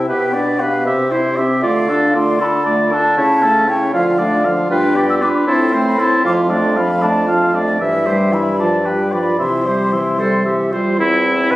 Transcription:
0.08 B2 B3 G4 B4 G5
0.33 D4 B4 D5
0.60 B3 G4 B4 F5
0.85 C3 C4 G4 E5
1.11 E4 C5
1.37 C4 G4 E5
1.62 D3 A3 F4 D5 F5
1.88 D4 A4
2.14 A3 F4 D5 C6
2.40 D4 A4 B5
2.66 A3 F4 D5
2.92 D4 A4 A5
3.17 C#3 C#4 E4 C#5 A5
3.43 A3 C#4 A4
3.68 C#4 E4 C#5 G5
3.93 D3 F3 F4 F5
4.19 A3 D4 D5
4.45 F3 F4 F5
4.70 G2 D4 F4 B4 G5
4.95 B3 G4 D5
5.10 E6
5.21 D4 F4 B4 D6
5.47 A2 C4 E4 A4 C6
5.73 A3 C4 C5
5.88 B5
5.98 C4 E4 A4 C6
6.24 F2 F3 F4 F5 D6
6.50 A3 D4 D5 C6
6.76 F3 F4 F5 B5
7.02 A3 D4 D5 A5
7.27 F3 F4 F5
7.53 A3 D4 D5
7.80 G2 E3 E4 E5
8.06 G3 G4 C5
8.32 E3 E4 E5 B5
8.59 F3 F4 D5 A5
8.85 G3 G4 B4 G5
9.12 F3 F4 D5 B5
9.38 C3 E3 E4 E5 C6
9.65 G3 G4 C5
9.93 E3 E4 E5
10.19 G3 A4 C5
10.45 E3 G4 E5
10.72 G3 F4 C5
10.98 E2 C4 E4
11.50 B2 B4

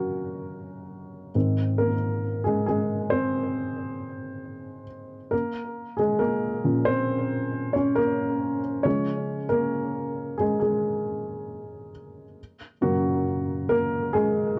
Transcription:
Already playing: F#2 C#3 F#3 A#3 C#4 F#4 A#4 C#5
1.35 G#2 D#3 C4
1.78 A#3 A#4
2.44 G#3 G#4
2.66 G#3 G#4
3.10 C4 C5
5.31 A#3 A#4
5.97 G#3 G#4
6.19 A#3 A#4
6.64 A#2 F3 C#4
6.85 C4 C5
7.73 C#4 C#5
7.95 A#3 A#4
8.83 C#3 F3 G#3 C#4 C#5
9.49 A#3 A#4
10.38 G#3 G#4
10.60 G#3 G#4
12.81 F#2 C#3 F#3 A#3 F#4
13.69 A#3 A#4
14.13 G#3 G#4

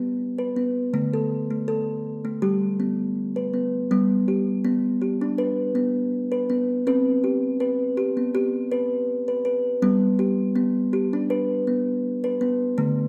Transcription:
Already playing: G3 B3
0.38 B4
0.56 B3
0.94 D3 A3
1.13 A4
1.51 A3
1.68 A4
2.25 A3
2.42 G3 G4
2.80 B3
3.36 B4
3.54 B3
3.91 G3 B3
4.28 G4
4.64 B3
5.02 G4
5.21 D4
5.38 B4
5.75 B3
6.32 B4
6.50 B3
6.87 C4 B4
7.24 G4
7.60 B4
7.97 G4
8.17 B3
8.35 G4
8.71 B4
9.28 B4
9.45 B4
9.82 G3 B3
10.19 G4
10.56 B3
10.93 G4
11.13 D4
11.30 B4
11.67 B3
12.24 B4
12.41 B3
12.78 D3 A3

